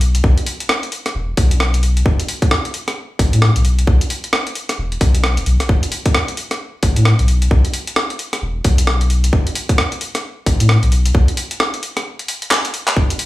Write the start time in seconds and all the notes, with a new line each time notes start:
Already playing: B1
0.01 open hi-hat
0.15 closed hi-hat
0.24 B1, kick
0.38 closed hi-hat
0.47 open hi-hat
0.60 closed hi-hat
0.69 cross-stick
0.83 closed hi-hat
0.92 open hi-hat
1.06 cross-stick, closed hi-hat
1.15 E1
1.37 B1, kick, open hi-hat
1.51 closed hi-hat
1.60 cross-stick
1.74 closed hi-hat
1.83 open hi-hat
1.97 closed hi-hat
2.06 F#1, kick
2.20 closed hi-hat
2.29 open hi-hat
2.42 kick, closed hi-hat
2.51 cross-stick
2.65 closed hi-hat
2.74 open hi-hat
2.88 cross-stick, closed hi-hat
3.19 A1, kick, open hi-hat
3.33 A2, closed hi-hat
3.42 cross-stick
3.56 B1, closed hi-hat
3.65 open hi-hat
3.79 closed hi-hat
3.87 B1, kick
4.01 closed hi-hat
4.10 open hi-hat
4.24 closed hi-hat
4.33 cross-stick
4.47 closed hi-hat
4.55 open hi-hat
4.69 cross-stick, closed hi-hat
4.78 E1
4.92 closed hi-hat
5.01 B1, kick, open hi-hat
5.15 closed hi-hat
5.24 cross-stick
5.37 E1, closed hi-hat
5.46 B1, open hi-hat
5.60 cross-stick, closed hi-hat
5.69 F#1, kick
5.83 closed hi-hat
5.92 open hi-hat
6.06 kick, closed hi-hat
6.15 cross-stick
6.28 closed hi-hat
6.37 open hi-hat
6.51 cross-stick, closed hi-hat
6.83 A1, kick, open hi-hat
6.96 A2, closed hi-hat
7.05 cross-stick
7.19 B1, closed hi-hat
7.28 open hi-hat
7.42 closed hi-hat
7.51 B1, kick
7.65 closed hi-hat
7.74 open hi-hat
7.87 closed hi-hat
7.96 cross-stick
8.10 closed hi-hat
8.19 open hi-hat
8.33 cross-stick, closed hi-hat
8.42 E1
8.65 B1, kick, open hi-hat
8.78 closed hi-hat
8.87 cross-stick
9.01 closed hi-hat
9.10 open hi-hat
9.24 closed hi-hat
9.33 F#1, kick
9.47 closed hi-hat
9.55 open hi-hat
9.69 kick, closed hi-hat
9.78 cross-stick
9.92 closed hi-hat
10.01 open hi-hat
10.15 cross-stick, closed hi-hat
10.46 A1, kick, open hi-hat
10.60 A2, closed hi-hat
10.69 cross-stick
10.83 B1, closed hi-hat
10.92 open hi-hat
11.06 closed hi-hat
11.15 B1, kick
11.28 closed hi-hat
11.37 open hi-hat
11.51 closed hi-hat
11.60 cross-stick
11.74 closed hi-hat
11.83 open hi-hat
11.97 cross-stick, closed hi-hat
12.19 closed hi-hat
12.28 open hi-hat
12.42 closed hi-hat
12.51 cross-stick, clap
12.65 closed hi-hat
12.74 open hi-hat
12.88 clap, closed hi-hat
12.97 F#1, kick
13.10 closed hi-hat
13.19 open hi-hat